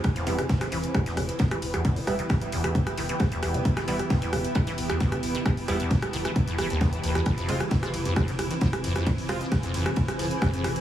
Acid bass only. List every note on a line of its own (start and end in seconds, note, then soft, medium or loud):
0.16 0.25 E2 medium
0.27 0.40 E2 medium
0.38 0.42 E3 loud
0.61 0.65 D#3 medium
0.72 0.78 E3 medium
0.94 1.04 E2 medium
1.06 1.19 E2 medium
1.17 1.21 E3 loud
1.40 1.43 D#3 medium
1.51 1.57 E3 medium
1.74 1.83 E2 medium
1.85 1.98 E2 medium
1.96 2.00 E3 loud
2.19 2.23 D#3 medium
2.30 2.36 E3 medium
2.52 2.62 E2 medium
2.64 2.76 E2 medium
2.75 2.79 E3 loud
2.98 3.01 D#3 medium
3.09 3.15 E3 medium
3.32 3.41 E2 medium
3.43 3.56 E2 medium
3.54 3.58 E3 loud
3.77 3.80 D#3 medium
3.88 3.94 E3 medium
4.10 4.20 E2 medium
4.22 4.34 E2 medium
4.33 4.37 E3 loud
4.55 4.59 D#3 medium
4.67 4.73 E3 medium
4.90 4.99 E2 medium
5.00 5.14 E2 medium
5.12 5.16 E3 loud
5.35 5.38 D#3 medium
5.46 5.52 E3 medium
5.68 5.78 E2 medium
5.80 5.92 E2 medium
5.91 5.95 E3 loud
6.13 6.17 D#3 medium
6.25 6.31 E3 medium
6.48 6.57 E2 medium
6.58 6.68 E3 loud
6.70 6.94 D#2 loud
6.93 6.99 E2 medium
7.04 7.13 D#2 medium
7.15 7.21 E2 loud
7.26 7.36 F2 medium
7.38 7.50 F2 medium
7.49 7.53 F3 loud
7.71 7.75 D#3 medium
7.83 7.89 F3 medium
8.05 8.14 F2 medium
8.16 8.29 F2 medium
8.28 8.32 F3 loud
8.51 8.54 D#3 medium
8.61 8.68 F3 medium
8.84 8.94 F2 medium
8.96 9.08 F2 medium
9.07 9.10 F3 loud
9.29 9.33 D#3 medium
9.41 9.47 F3 medium
9.63 9.72 F2 medium
9.74 9.87 F2 medium
9.86 9.89 F3 loud
10.08 10.12 D#3 medium
10.19 10.26 F3 medium
10.42 10.52 F2 medium
10.54 10.66 F2 medium
10.64 10.68 F3 loud